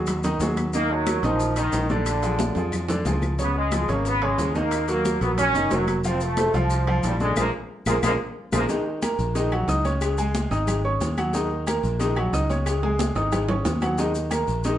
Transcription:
Already playing: D#2 D#3 F#3 F#4 G#4
0.07 high bongo, high conga, low conga, high timbale, claves, maracas
0.24 D#3 D#4 D#5, high bongo, high conga, low conga, high timbale, maracas
0.40 D#2 F#3 F#4 G#4, high bongo, low bongo, high conga, low timbale, maracas
0.57 high bongo, high conga, high timbale, claves, maracas
0.73 D#3 A#3 D#4 D#5, high bongo, high conga, maracas
0.90 F#3, high conga
1.06 F#3 F#4 A#4, high bongo, high conga, high timbale, low timbale, claves, maracas
1.23 A#1 D#3 F3 D#4 D#5, high conga, high timbale, maracas
1.40 high bongo, high conga, maracas
1.56 D#3 D#4 D#5, high conga, high timbale, claves, maracas
1.72 A#1, high bongo, low bongo, high conga, high timbale, low timbale, maracas
1.89 D3 D4 D5, high conga, maracas
2.06 high bongo, high conga, high timbale, claves, maracas
2.22 F3 F4 G#4, high bongo, high conga, high timbale, maracas
2.39 high bongo, high conga, high timbale, maracas
2.55 F2 F3 F4 G#4, high conga, high timbale, maracas
2.72 high bongo, high conga, low conga, claves, maracas
2.88 D3 D4 D5, high bongo, high conga, low timbale, maracas
3.05 C#2 F3 F4 G#4, high bongo, low bongo, high conga, low timbale, maracas
3.22 high bongo, high conga, low timbale, claves, maracas
3.38 C#3 B3 C#4 C#5, high bongo, high conga, maracas
3.56 G#3, high conga
3.72 F3 F4 G#4, high bongo, high conga, high timbale, low timbale, claves, maracas
3.88 G#1 C#3 A#3 C#4 C#5, high conga, high timbale, maracas
4.05 B3, high bongo, high conga, maracas
4.22 C#3 G#3 C#4 C#5, high conga, high timbale, claves
4.38 D#2, high bongo, low bongo, high conga, high timbale, low timbale, maracas
4.55 D#3 A#3 D#4 D#5, high conga, maracas
4.71 high bongo, high conga, high timbale, claves, maracas
4.88 F#3 A#3 F#4 A#4, high bongo, high conga, high timbale, maracas
5.05 high bongo, high conga, low timbale, maracas
5.21 A#1 F#3 B3 F#4 A#4, high conga, high timbale, maracas
5.38 C#4, high bongo, high conga, low conga, high timbale, claves, maracas
5.54 F#1 D#3 D#4 D#5, high bongo, high conga, high timbale, maracas
5.71 F1 F#3 F#4 A#4, high bongo, low bongo, high conga, low timbale, maracas
5.88 high bongo, high conga, high timbale, claves, maracas
6.04 F3 C4 F4 F5, high bongo, high conga, maracas
6.20 A3, high conga, maracas
6.37 A3 A4 C5, high bongo, high conga, high timbale, low timbale, claves, maracas
6.54 C2 F3 F4 F5, high conga, high timbale, maracas
6.70 high bongo, high conga, maracas
6.87 F3 F4 F5, high conga, high timbale, claves
7.03 A#1 G3, high bongo, low bongo, high conga, high timbale, low timbale, maracas
7.20 D3 G#3 D4 D5, high conga, maracas
7.36 A#1 F3 G#3 A#3 F4 G#4 A#4, low bongo, high conga, high timbale, claves, maracas
7.86 A#1 F3 G#3 A#3 F4 G#4 A#4, low bongo, high conga, high timbale, claves, maracas
8.03 A#1 F3 G#3 A#3 F4 G#4 A#4, low bongo, high conga, high timbale, claves, maracas
8.52 A#1 F3 G#3 A#3 F4 G#4 A#4, low bongo, high conga, high timbale, claves, maracas
8.69 D#3 D#4 D#5, cowbell, high conga, low agogo, maracas
8.86 high conga
9.02 A#3 A#4 A#5, cowbell, high conga, low timbale, low agogo, claves, maracas
9.19 A#1, cowbell, high conga, maracas
9.35 D#3 D#4 D#5, cowbell, high conga, low agogo, maracas
9.52 F#3 F#4 F#5, high conga, low agogo, claves
9.68 C#2 D#4 D#5 D#6, cowbell, high conga, low timbale, maracas
9.85 C#4 C#5 C#6, cowbell, high conga, low agogo, maracas
10.01 cowbell, high conga, low agogo, claves, maracas
10.18 G#3 G#4 G#5, high conga, maracas
10.35 cowbell, high conga, low timbale, low agogo, maracas
10.51 G#1 D#4 D#5 D#6, cowbell, high conga, low agogo, maracas
10.67 cowbell, high conga, low conga, low agogo, claves, maracas
10.84 C#4 C#5 C#6, high conga
11.01 D#2, cowbell, high conga, low timbale, low agogo, maracas
11.17 F#3 F#4 F#5, high conga, low agogo, claves, maracas
11.33 D#3 D#4 D#5, cowbell, high conga, low agogo, maracas
11.51 high conga
11.67 A#3 A#4 A#5, cowbell, high conga, low timbale, low agogo, claves, maracas
11.83 A#1, cowbell, high conga, maracas
11.99 D#3 D#4 D#5, cowbell, high conga, low agogo, maracas
12.16 F#3 F#4 F#5, high conga, low agogo, claves
12.33 C#2 D#4 D#5 D#6, cowbell, high conga, low timbale, maracas
12.49 C#4 C#5 C#6, cowbell, high conga, low agogo, maracas
12.66 cowbell, high conga, high timbale, low agogo, claves, maracas
12.83 G#3 G#4 G#5, high conga, high timbale
12.99 cowbell, high conga, high timbale, low agogo, maracas
13.15 G#1 D#4 D#5 D#6, cowbell, high conga, low timbale, low agogo, maracas
13.32 cowbell, high conga, low conga, low timbale, low agogo, claves, maracas
13.49 C#4 C#5 C#6, high conga, low conga, low timbale
13.65 D#2, cowbell, high conga, low timbale, low agogo, maracas
13.82 F#3 F#4 F#5, high conga, low timbale, low agogo, claves, maracas
13.98 D#3 D#4 D#5, cowbell, high conga, low agogo, maracas
14.15 high conga, maracas
14.31 A#3 A#4 A#5, cowbell, high conga, low timbale, low agogo, claves, maracas
14.48 A#1, cowbell, high conga, maracas
14.64 D#3 D#4 D#5, cowbell, high conga, low agogo, maracas

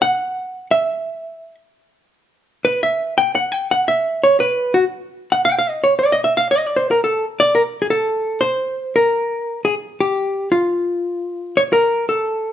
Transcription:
0.02 F#5
0.71 E5
2.65 B4
2.83 E5
3.18 G5
3.35 F#5
3.52 G5
3.71 F#5
3.88 E5
4.23 C#5
4.40 B4
4.74 F#4
5.32 F#5
5.45 G5
5.59 F5
5.69 D#5
5.84 C#5
5.99 D5
6.12 D#5
6.24 E5
6.37 F5
6.51 D#5
6.66 D5
6.76 C5
6.91 A#4
7.04 A4
7.40 D5
7.55 A#4
7.82 G#4
7.90 A4
8.41 C5
8.96 A#4
9.65 G#4
10.00 G4
10.52 F4
11.57 C#5
11.73 A#4
12.09 A4

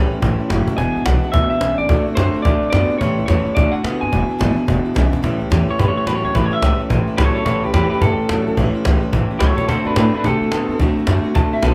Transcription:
Already playing: A2 E3 G3 C#4 E4
0.12 G3 C#4 E4, muted upright bass stroke, cajon slap
0.22 A1 A2 E3 G3 C#4 E4, cajon bass
0.39 G3 C#4 E4, muted upright bass stroke, cajon slap
0.50 F#1 A2 E3 F#3 G3 C#4 E4, cajon slap
0.67 G3 C#4 E4, muted upright bass stroke, cajon bass
0.78 E1 E2 B2 E3 G#3 D4 E4 G#5, cajon bass
0.95 G#1 E3 G#3 D4 E4, cajon slap
1.06 B1 E2 B2 E3 G#3 D4 E4 F#5, cajon slap
1.23 E3 G#3 D4 E4, muted upright bass stroke, cajon slap
1.32 D2 E2 B2 E3 G#3 D4 E5, cajon bass
1.36 E4
1.50 E3 G#3 D4 E4 E5, muted upright bass stroke, cajon slap
1.61 B1 E2 B2 C#3 E3 G#3 D4 E4, cajon slap
1.78 A1 E3 G#3 D4 E4 D5, cajon slap
1.89 D2 D3 A3 C4 F#4, cajon bass
2.06 A3 C4 F#4, muted upright bass stroke, cajon slap
2.15 F#2 D3 A3 C5, cajon slap
2.20 C4 F#4
2.34 A3 C4 F#4, muted upright bass stroke, cajon slap
2.42 D2 D3 A3 D5, cajon bass
2.47 C4 F#4
2.62 A3 C4 F#4, muted upright bass stroke, cajon slap
2.70 F#2 D3 A3 B3 C4 F#4 D5, cajon slap
2.90 A3 C4 F#4, muted upright bass stroke, cajon slap
2.98 A1 A2 E3 G3 C#5, cajon bass
3.03 C#4 E4
3.18 C#2 G3 C#4 E4, cajon slap
3.26 E2 A2 E3 G3 C#4 E4 C#5, cajon slap
3.45 G3 C#4 E4, muted upright bass stroke, cajon slap
3.55 D2 D3 A3 C4 F#4 D5, cajon bass
3.72 A3 C4 F#4 F#5, muted upright bass stroke, cajon slap
3.84 A2 D3 A3 B3 C4 F#4, cajon slap
4.01 G2 A3 C4 F#4 G#5, cajon slap
4.12 E1 E2 B2 E3 G#3 D4 E4, cajon bass
4.29 E3 G#3 D4 E4, muted upright bass stroke, cajon slap
4.39 G#1 E2 B2 E3 G#3 D4 E4, cajon slap
4.56 E3 G#3 D4 E4, muted upright bass stroke, cajon slap
4.67 E1 E2 B2 E3 G#3 D4 E4, cajon bass
4.84 E3 G#3 D4 E4, muted upright bass stroke, cajon slap
4.94 B1 E2 B2 C#3 E3 G#3 D4 E4, cajon slap
5.12 E3 G#3 D4 E4, cajon bass
5.22 A1 A2 E3 G3 C#4 E4, cajon bass
5.40 C#2 G3 C#4 E4
5.50 E2 A2 E3 G3 C#4 E4, cajon slap
5.68 G3 C#4 E4 C#5, muted upright bass stroke
5.78 G2 A2 E3 G3 C#4 E4 B4, cajon bass
5.88 C#5
5.96 G3 C#4 E4 C#5, muted upright bass stroke
6.07 E2 A2 E3 F#3 G3 C#4 E4 B4, cajon slap
6.15 C#5
6.24 D2 G3 C#4 E4 C#5
6.34 A1 A2 E3 G3 C#4 E4 B4, cajon bass
6.44 C#5
6.51 G3 C#4 E4 E5, muted upright bass stroke
6.62 C#2 A2 E3 G3 C#4 E4, cajon slap
6.79 G3 C#4 E4, muted upright bass stroke
6.89 A1 A2 E3 G3 C#4 E4, cajon bass
7.07 G3 C#4 E4, muted upright bass stroke
7.17 C#2 A2 E3 F#3 G3 C#4 E4 A4 C#5, cajon slap
7.34 C#4 E4 A4 C#5, muted upright bass stroke
7.38 G3
7.45 A1 A2 E3 G3 C#4 E4 A4 C#5, cajon bass
7.63 C#2 G3 C#4 E4 G4 B4
7.74 E2 A2 E3 G3 C#4 E4 G4 B4, cajon slap
7.90 C#4 E4 G4 B4, muted upright bass stroke
7.94 G3
8.01 G2 A2 E3 G3 C#4 A4, cajon bass
8.05 E4
8.19 G3 C#4 E4, muted upright bass stroke
8.29 E2 A2 E3 F#3 G3 C#4 E4, cajon slap
8.47 D2 G3 C#4 E4
8.57 A1 A2 E3 G3 C#4 E4, cajon bass
8.74 G3 C#4 E4, muted upright bass stroke
8.85 C#2 A2 E3 G3 C#4 E4, cajon slap
9.01 G3 C#4 E4, muted upright bass stroke
9.12 A1 A2 E3 G3 C#4 E4, cajon bass
9.31 G3 C#4 E4, muted upright bass stroke
9.39 C#2 A2 E3 F#3 G3 C#4 E4 A4 C#5, cajon slap
9.57 G3 C#4 E4 A4 C#5, muted upright bass stroke, cajon bass
9.68 D2 D3 A3 C4 F#4 A4 C5, cajon bass
9.85 F#2 A3 C4 D4 F#4 B4
9.96 A2 D3 A3 C4 D4 F#4 B4, cajon slap
10.13 A3 C4 D4 F#4 B4, muted upright bass stroke
10.24 C3 D3 A3 C4 F#4 A4, cajon bass
10.41 A3 C4 F#4, muted upright bass stroke
10.52 A2 D3 A3 B3 C4 F#4, cajon slap
10.69 G2 A3 C4 F#4
10.79 D2 D3 A3 C4 F#4, cajon bass
10.97 A3 C4 F#4, muted upright bass stroke
11.07 F#2 D3 A3 C4 F#4, cajon slap
11.24 A3 C4 F#4, muted upright bass stroke
11.34 D2 D3 A3 C4 F#4 A5, cajon bass
11.52 A3 C4 F#4 E5, muted upright bass stroke
11.62 B1 D3 A3 B3 C4 F#4 A5, cajon slap

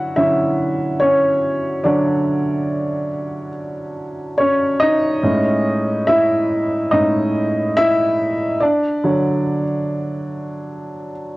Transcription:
Already playing: D3 F#3 C#4 E4 F#4 E5 F#5
0.16 D3 F#3 C#4 E4 E5
1.00 C#4 C#5
1.84 D3 F#3 D4 C#5 D5
4.38 C#4 C#5
4.80 D#4 D#5
5.23 A2 G#3 C#4
6.07 E4 E5
6.91 A2 G#3 C#4 D#4 D#5
7.77 E4 E5
8.60 D4 D5
9.04 D3 F#3 C#5

